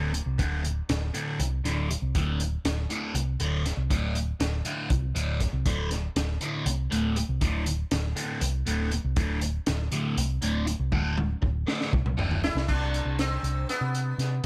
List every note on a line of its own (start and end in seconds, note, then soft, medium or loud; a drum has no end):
0.00 0.19 D1 medium
0.00 0.12 D2 medium
0.00 0.12 A2 medium
0.00 0.13 D3 loud
0.13 muted distorted electric guitar stroke soft
0.13 closed hi-hat medium
0.26 0.36 C2 medium
0.38 0.80 D1 loud
0.38 0.64 D2 medium
0.38 0.63 A2 medium
0.38 0.62 D3 medium
0.38 kick loud
0.38 closed hi-hat medium
0.64 muted distorted electric guitar stroke medium
0.64 closed hi-hat medium
0.89 1.10 D1 medium
0.89 muted distorted electric guitar stroke soft
0.89 snare loud
0.89 closed hi-hat medium
1.14 1.38 D2 medium
1.14 1.39 A2 medium
1.14 1.39 D3 loud
1.14 closed hi-hat medium
1.39 1.60 C2 medium
1.39 muted distorted electric guitar stroke medium
1.39 closed hi-hat medium
1.64 1.95 D1 medium
1.64 1.89 D2 medium
1.64 1.89 A2 medium
1.64 1.89 D3 loud
1.64 snare soft
1.64 closed hi-hat medium
1.90 muted distorted electric guitar stroke soft
1.90 closed hi-hat medium
2.02 2.12 C2 medium
2.15 2.56 D1 loud
2.15 2.40 D2 medium
2.15 2.40 A2 medium
2.15 2.39 D3 medium
2.15 kick loud
2.15 closed hi-hat loud
2.40 muted distorted electric guitar stroke medium
2.40 closed hi-hat medium
2.65 2.85 D1 medium
2.65 muted distorted electric guitar stroke soft
2.65 snare loud
2.65 closed hi-hat medium
2.90 3.13 D2 medium
2.90 3.14 A2 medium
2.90 3.14 D3 medium
2.90 closed hi-hat medium
3.14 3.35 C2 loud
3.14 muted distorted electric guitar stroke soft
3.14 closed hi-hat medium
3.40 3.71 D1 loud
3.40 3.64 D2 medium
3.40 3.64 A2 medium
3.40 3.65 D3 loud
3.40 closed hi-hat medium
3.65 muted distorted electric guitar stroke soft
3.65 snare soft
3.65 closed hi-hat medium
3.77 3.87 C2 medium
3.90 4.32 D1 loud
3.90 4.15 D2 medium
3.90 4.14 A2 medium
3.90 4.13 D3 medium
3.90 kick loud
3.90 closed hi-hat medium
4.14 muted distorted electric guitar stroke soft
4.14 closed hi-hat medium
4.40 4.61 D1 medium
4.40 muted distorted electric guitar stroke soft
4.40 snare loud
4.40 closed hi-hat medium
4.65 4.89 D2 medium
4.65 4.89 A2 medium
4.65 4.89 D3 medium
4.65 closed hi-hat medium
4.90 5.11 C2 medium
4.90 muted distorted electric guitar stroke soft
4.90 kick loud
4.90 closed hi-hat medium
5.14 5.46 D1 medium
5.14 5.39 D2 medium
5.14 5.40 A2 medium
5.14 5.40 D3 loud
5.14 closed hi-hat medium
5.40 muted distorted electric guitar stroke soft
5.40 kick medium
5.40 snare soft
5.40 closed hi-hat medium
5.53 5.63 C2 medium
5.66 6.07 D1 loud
5.66 5.91 D2 medium
5.66 5.91 A2 medium
5.66 5.90 D3 medium
5.66 kick loud
5.66 closed hi-hat medium
5.91 muted distorted electric guitar stroke medium
5.91 snare soft
5.91 closed hi-hat medium
6.16 6.37 D1 medium
6.16 muted distorted electric guitar stroke soft
6.16 snare loud
6.16 closed hi-hat medium
6.41 6.65 D2 medium
6.41 6.66 A2 medium
6.41 6.66 D3 medium
6.41 closed hi-hat medium
6.66 6.86 C2 loud
6.66 muted distorted electric guitar stroke soft
6.66 closed hi-hat loud
6.91 7.22 D1 medium
6.91 7.16 D2 medium
6.91 7.16 A2 medium
6.91 7.16 D3 medium
6.91 closed hi-hat medium
7.16 muted distorted electric guitar stroke soft
7.16 closed hi-hat medium
7.29 7.39 C2 medium
7.41 7.83 D1 loud
7.41 7.66 D2 medium
7.41 7.66 A2 medium
7.41 7.65 D3 medium
7.41 kick loud
7.41 closed hi-hat medium
7.66 muted distorted electric guitar stroke soft
7.66 closed hi-hat medium
7.91 8.12 D1 medium
7.91 muted distorted electric guitar stroke soft
7.91 snare loud
7.91 closed hi-hat medium
8.16 8.40 D2 medium
8.16 8.40 A2 medium
8.16 8.40 D3 medium
8.16 closed hi-hat medium
8.41 8.62 C2 medium
8.41 muted distorted electric guitar stroke soft
8.41 closed hi-hat medium
8.66 8.97 D1 medium
8.66 8.90 D2 medium
8.66 8.91 A2 medium
8.66 8.91 D3 loud
8.66 closed hi-hat medium
8.91 muted distorted electric guitar stroke soft
8.91 closed hi-hat medium
9.04 9.15 C2 medium
9.16 9.58 D1 loud
9.16 9.42 D2 medium
9.16 9.41 A2 medium
9.16 9.40 D3 medium
9.16 kick loud
9.16 closed hi-hat medium
9.41 muted distorted electric guitar stroke medium
9.41 closed hi-hat medium
9.66 9.88 D1 medium
9.66 muted distorted electric guitar stroke soft
9.66 snare loud
9.66 closed hi-hat medium
9.92 10.16 D2 medium
9.92 10.16 A2 medium
9.92 10.17 D3 medium
9.92 closed hi-hat medium
10.17 10.38 C2 loud
10.17 muted distorted electric guitar stroke medium
10.17 closed hi-hat medium
10.42 10.73 D1 medium
10.42 10.66 D2 medium
10.42 10.66 A2 medium
10.42 10.66 D3 medium
10.42 closed hi-hat medium
10.67 muted distorted electric guitar stroke soft
10.67 closed hi-hat medium
10.80 10.90 C2 medium
10.92 11.34 D1 loud
10.92 11.17 D2 medium
10.92 11.17 A2 medium
10.92 11.16 D3 medium
10.92 kick loud
10.92 high tom medium
11.17 muted distorted electric guitar stroke medium
11.17 high tom medium
11.42 11.63 D1 medium
11.42 muted distorted electric guitar stroke soft
11.42 kick medium
11.67 11.91 D2 medium
11.67 11.92 A2 medium
11.67 11.92 D3 loud
11.67 snare medium
11.81 snare medium
11.92 12.14 C2 medium
11.92 muted distorted electric guitar stroke soft
11.92 kick loud
11.92 mid tom medium
12.06 mid tom medium
12.17 12.48 D1 loud
12.17 12.41 D2 medium
12.17 12.42 A2 medium
12.17 12.42 D3 loud
12.17 floor tom medium
12.31 floor tom medium
12.42 12.68 E4 medium
12.42 muted distorted electric guitar stroke soft
12.42 snare loud
12.55 12.66 C2 medium
12.55 snare medium
12.68 13.00 C2 loud
12.68 13.19 D4 medium
12.68 kick loud
12.68 crash medium
12.94 closed hi-hat medium
13.05 13.37 C2 medium
13.19 13.69 C4 medium
13.19 snare loud
13.19 closed hi-hat medium
13.43 13.64 C2 medium
13.43 closed hi-hat medium
13.69 14.46 B3 medium
13.69 snare soft
13.69 closed hi-hat medium
13.81 14.12 C3 medium
13.95 closed hi-hat medium
14.18 14.39 C3 medium
14.18 snare soft
14.18 closed hi-hat medium